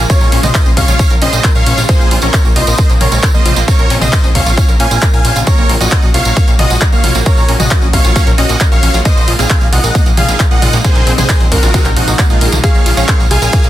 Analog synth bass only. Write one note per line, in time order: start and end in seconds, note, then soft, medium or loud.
0.21 0.28 A#1 medium
0.32 0.39 A#1 loud
0.43 0.50 A#1 medium
0.66 0.73 A#1 medium
0.77 0.84 C2 loud
0.88 0.95 A#1 medium
1.10 1.17 A#1 medium
1.22 1.29 A#1 loud
1.33 1.40 A#1 medium
1.55 1.62 A#1 medium
1.67 1.73 A#1 loud
1.78 1.85 A#1 medium
2.00 2.07 A#1 medium
2.11 2.18 A#1 loud
2.23 2.29 A#1 medium
2.45 2.52 A#1 medium
2.56 2.63 C2 loud
2.67 2.74 A#1 medium
2.90 2.96 A#1 medium
3.01 3.08 A#1 loud
3.12 3.19 A#1 medium
3.34 3.41 A#1 medium
3.45 3.52 A#1 loud
3.57 3.63 A#1 medium
3.79 3.86 A#1 medium
3.90 3.97 A#1 loud
4.01 4.08 A#1 medium
4.24 4.31 A#1 medium
4.35 4.42 C2 loud
4.46 4.53 A#1 medium
4.69 4.75 A#1 medium
4.80 4.87 A#2 loud
4.91 4.98 A#1 medium
5.14 5.20 A#1 medium
5.25 5.31 A#1 loud
5.36 5.43 A#1 medium
5.58 5.65 A#1 medium
5.70 5.76 A#1 loud
5.81 5.88 A#1 medium
6.03 6.10 A#1 medium
6.14 6.21 C2 loud
6.26 6.32 A#1 loud
6.48 6.55 A#1 medium
6.59 6.66 A#1 loud
6.70 6.77 A#1 medium
6.93 6.99 A#1 medium
7.04 7.11 A#1 loud
7.15 7.22 A#1 medium
7.38 7.44 A#1 medium
7.49 7.55 A#1 loud
7.60 7.67 A#1 medium
7.82 7.89 A#1 medium
7.93 8.00 C2 loud
8.05 8.11 A#1 medium
8.27 8.34 A#1 medium
8.38 8.45 A#1 loud
8.49 8.56 A#1 medium
8.72 8.78 A#1 medium
8.83 8.90 A#1 loud
8.94 9.01 A#1 medium
9.17 9.23 A#1 medium
9.28 9.35 A#1 loud
9.39 9.46 A#1 medium
9.61 9.68 A#1 medium
9.72 9.79 C2 loud
9.84 9.90 A#1 medium
10.06 10.13 A#1 medium
10.17 10.24 A#1 loud
10.28 10.35 A#1 medium
10.51 10.58 A#1 medium
10.62 10.69 A#1 loud
10.73 10.80 A#1 medium
10.96 11.02 A#1 medium
11.07 11.14 A#1 loud
11.18 11.25 A#1 medium
11.40 11.47 A#1 medium
11.52 11.58 C2 loud
11.63 11.70 A#1 medium
11.85 11.92 A#1 medium
11.96 12.03 A#1 loud
12.08 12.14 A#1 medium
12.30 12.37 A#1 medium
12.41 12.48 A#1 loud
12.53 12.59 C2 medium
12.75 12.82 A#1 medium
12.86 12.93 A#1 loud
12.97 13.04 A#1 medium
13.20 13.26 A#1 medium
13.31 13.38 C2 loud
13.42 13.49 A#1 medium
13.64 13.70 A#1 medium